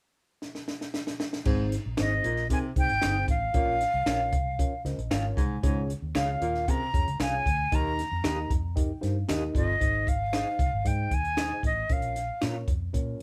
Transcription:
0.42 snare
0.55 snare
0.68 snare
0.81 snare
0.94 snare
1.07 snare
1.20 snare
1.33 snare
1.45 G#1 G#2 C4 D#4 G#4 C5, kick, crash
1.72 snare, closed hi-hat
1.86 A#1
1.97 G#1 C4 D#4 G#4 C5 D#5, finger snap, snare, closed hi-hat
2.24 A#1 A#2, closed hi-hat
2.36 snare
2.50 C3 C4 D#4 G#4 A#4 G#5, kick, closed hi-hat
2.76 C2 C4 D#4 G#4 C5 G5, kick, closed hi-hat
2.89 G#1, closed hi-hat
3.02 G1 C4 D#4 G#4 C5, finger snap, snare, closed hi-hat
3.28 A1 F5, kick, closed hi-hat
3.54 A#1 A#2 C#4 F4 A#4 C#5, kick, closed hi-hat
3.81 snare, closed hi-hat
3.94 C2
4.06 A#1 C#4 F4 A#4 C#5 F5, finger snap, snare, closed hi-hat
4.33 C2, kick, closed hi-hat
4.59 C#4 F4 A#4 C#5, kick, closed hi-hat
4.85 C#2 C#4 F4 A#4 C5 D#5, snare, closed hi-hat
4.98 A#1, closed hi-hat
5.11 G#1 C#4 F4 A#4 C#5 F5, finger snap, snare, closed hi-hat
5.37 C2 G#2 G#5, kick, closed hi-hat
5.63 C#2 G#2 C#4 F4 G#4 C#5, kick, closed hi-hat
5.90 closed hi-hat
6.02 D#2
6.15 C#2 C#4 F4 G#4 C#5 F5, finger snap, snare, closed hi-hat
6.41 D#2 A#2, closed hi-hat
6.55 snare
6.67 C3 C#4 F4 G#4 A#4 A#5, kick, closed hi-hat
6.93 F2 C#4 F4 G#4 C#5, kick, closed hi-hat
7.07 C#2, closed hi-hat
7.19 C2 C#4 F4 G#4 C#5 F5 G#5, finger snap, snare, closed hi-hat
7.46 D2, kick, closed hi-hat
7.72 D#2 D#4 G4 A#4 D#5 A#5, kick, closed hi-hat
7.99 snare, closed hi-hat
8.12 F2
8.24 D#2 D#4 G4 A#4 D#5, finger snap, snare, closed hi-hat
8.50 F2 A#5, kick, closed hi-hat
8.76 D#4 G4 A#4 D#5 G5, kick, closed hi-hat
9.01 G2 D#4 G4 A#4 C5 F5, snare, closed hi-hat
9.28 D#2 D#4 G4 A#4 D#5, finger snap, snare, closed hi-hat
9.55 G1 F2 D#5, kick, closed hi-hat
9.80 G#1 D#4 G#4 C5 D#5, kick, closed hi-hat
10.07 F5, kick, closed hi-hat
10.33 D#4 G#4 C5 D#5, finger snap, snare, closed hi-hat
10.59 C2, kick, closed hi-hat
10.73 G#1
10.85 G#2 D#4 G#4 C5 D#5 G5, kick, closed hi-hat
11.11 D#2 G#5, kick, closed hi-hat
11.25 closed hi-hat
11.37 D#4 G#4 C5 D#5, finger snap, snare, closed hi-hat
11.63 A1 D#5, kick, closed hi-hat
11.89 A#1 C#4 F4 A#4 C#5 F5, kick, closed hi-hat
12.02 closed hi-hat
12.16 snare, closed hi-hat
12.41 A#2 C#4 F4 A#4 C#5, finger snap, snare, closed hi-hat
12.68 F2, kick, closed hi-hat
12.93 A#2 C#4 F4 A#4 C#5, kick, closed hi-hat

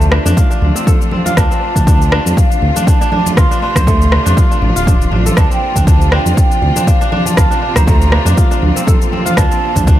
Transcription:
Already playing: D2 C3 A3 D4 F4 C5 A5
0.01 cabasa
0.12 D4, cross-stick
0.26 F2 D4, high conga, cabasa
0.37 F4, kick, cabasa
0.50 D4, cabasa
0.62 D2, high conga
0.75 C4, cabasa
0.87 A4, kick, high conga, cabasa
1.01 cabasa
1.11 C4, high conga
1.26 F4, high conga, cabasa
1.37 D2 D4 A5, kick, cross-stick, cabasa
1.51 C4, cabasa
1.76 D2 D4, kick, high conga, cabasa
1.87 D4, kick, cabasa
2.02 cabasa
2.12 D4, cross-stick
2.26 F2, high conga, cabasa
2.37 F5, kick, cabasa
2.51 cabasa
2.62 D2, low conga
2.76 D4, high conga, cabasa
2.87 D4 A5, kick, cabasa
3.01 D4, cabasa
3.12 D4, high conga
3.26 high conga, cabasa
3.36 D2 F4 C6, kick, cross-stick, cabasa
3.51 D4, cabasa
3.62 D4 C6
3.75 D2 C5, kick, cross-stick, high conga, low conga, cabasa
3.87 A3, kick, cabasa
4.02 cabasa
4.12 D4, cross-stick, low conga
4.26 F2 D4, high conga, cabasa
4.37 F4, kick, cabasa
4.51 D4, cabasa
4.62 A1, high conga
4.76 D1 F4, cabasa
4.87 D4, kick, high conga, cabasa
5.02 cabasa
5.12 A1 D4, high conga
5.26 A4, high conga, cabasa
5.37 D2 A#2 F3 C4 D4 A5, kick, cross-stick, cabasa
5.51 C4 G5, cabasa
5.76 D2 D4, kick, high conga, cabasa
5.87 D4 A5, kick, cabasa
6.01 cabasa
6.12 D4 G5, cross-stick
6.26 F2, high conga, cabasa
6.37 G5, kick, cabasa
6.52 cabasa
6.62 D2, low conga
6.76 D4, high conga, cabasa
6.87 D4 F5, kick, cabasa
7.01 D4, cabasa
7.12 D4, high conga
7.26 A5, high conga, cabasa
7.37 D2 F4, kick, cross-stick, cabasa
7.51 D4, cabasa
7.62 D4
7.76 D2 C5 A#5, kick, cross-stick, high conga, low conga, cabasa
7.87 A3 A#5, kick, cabasa
8.02 cabasa
8.12 D4, cross-stick
8.25 F2 D4, high conga, cabasa
8.37 F4, kick, cabasa
8.51 D4, cabasa
8.62 D2, high conga
8.76 C4, cabasa
8.87 A4, kick, high conga, cabasa
9.02 cabasa
9.12 C4, high conga
9.26 F4, high conga, cabasa
9.37 D2 D4 A5, kick, cross-stick, cabasa
9.51 C4, cabasa
9.76 D2 D4, kick, high conga, cabasa
9.87 D4, kick, cabasa

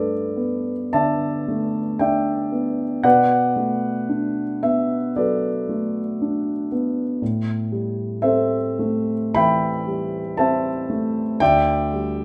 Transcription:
Already playing: G2 A3 D4 A4 B4 D5
0.36 B3
0.93 D3 D5 E5 A5
1.48 A3
1.99 D4 D5 E5 G5
2.52 B3
3.03 B2 B4 D5 F#5
3.56 A3
4.09 D4
4.63 B3 E5
5.16 F#3 A4 B4 D5
5.69 A3
6.22 D4
6.72 B3
7.22 A2
7.72 G3
8.22 C4 A4 C5 E5
8.79 A3
9.35 E3 E5 G5 B5
9.87 G3
10.37 C4 C5 E5 A5
10.90 A3
11.40 D2 D5 E5 G5
11.93 G3

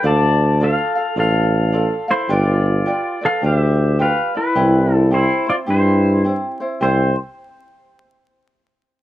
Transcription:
0.03 D2 F4 A4 D5 F5 A5
0.60 F4 A4 D5 F5
0.64 F5
0.95 F4 A4 F5
1.16 A1 F4 A4 D5 F5
1.72 F4 A4 D5 F5
2.08 E4 F4 A4 C5 F5
2.29 G1 F4 G4 B4 D5
2.33 D5
2.86 F4 G4 B4 D5
3.21 F4 A4 B4 D5
3.26 F5
3.42 D2 F4 G4 B4 D5
3.46 G4 E5
3.99 F4 G4 B4 D5 F5
4.34 E4 F4 B4 D5
4.55 C2 C4 E4 G4
4.93 A4
5.11 C4 E4 G4 C5
5.46 C4 E4 F4 C5 D5
5.66 G2 C4 E4 G4 C5
5.70 E4 C5
6.24 C4 E4 G4 C5
6.60 C4 E4 C5
6.81 C2 C4 E4 G4 C5

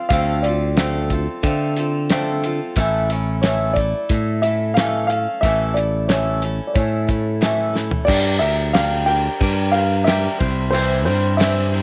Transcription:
Already playing: C4 F4 A4
0.09 D2 D3 A3 C4 F4 A4 F5, kick, closed hi-hat
0.42 F4 A4 D5, closed hi-hat
0.47 C4
0.77 D3 A3 C4 F4 A4, snare, closed hi-hat
1.10 C4 F4 A4, kick, closed hi-hat
1.43 D3 A3 C4 F4 A4, kick, closed hi-hat
1.76 C4 F4 A4, closed hi-hat
2.10 D3 A3 C4 F4 A4, snare, closed hi-hat
2.43 C4 F4 A4, closed hi-hat
2.76 A1 A2 E3 A3 C#4 E4 A4, kick, closed hi-hat
3.10 A3 C#4 E4 A4, closed hi-hat
3.42 A2 E3 A3 C#4 E4 A4 C#5, snare, closed hi-hat
3.73 A4 D5, kick, closed hi-hat
3.78 A3 E4
4.09 A2 A3 E4, kick, closed hi-hat
4.14 A4
4.42 C#4 E4 A4 E5, closed hi-hat
4.46 A3
4.74 A2 E3 C#4 F5, snare, closed hi-hat
4.78 A3 A4
5.07 A4 F5, closed hi-hat
5.12 A3 C#4
5.41 A1 A2 E3 A3 C#4 E5, kick, closed hi-hat
5.45 E4 A4
5.74 E4 A4 D5, closed hi-hat
5.79 A3
6.08 A2 E3 A3 C#4 E4 A4 C#5, snare, closed hi-hat
6.42 A3 C#4 E4 A4, closed hi-hat
6.67 D5
6.74 A2 A3 C#4 E4 C#5, kick, closed hi-hat
6.78 A4
7.07 A3 C#4 E4 A4, kick, closed hi-hat
7.41 A2 E3 A3 C#4 E4 A4, snare, closed hi-hat
7.73 A3 C#4 E4 A4, snare
7.91 floor tom
8.05 G2 G3 D4 G4 A#4 D5, kick, crash
8.39 D2 G4 A#4 E5, crash
8.44 D4
8.73 G3 D4 G4 A#4 F5, snare, crash
9.06 G4 A#4 G5, crash
9.10 D4
9.40 G2 G3 D4 G4 A#4, kick, crash
9.72 A#4 F5, crash
9.76 D4 G4
10.04 G3 D4 G4 E5, snare, crash
10.08 A#4
10.39 C2 G3 C4 E4 C5, kick, crash
10.71 C3 E3 G3 C4 E4 C5, crash
11.05 G2 G3 C4 E4 C5, crash
11.37 C3 E3 G3 C4 E4 C5 E5, snare, crash
11.72 G3 C4 E4 C5, crash

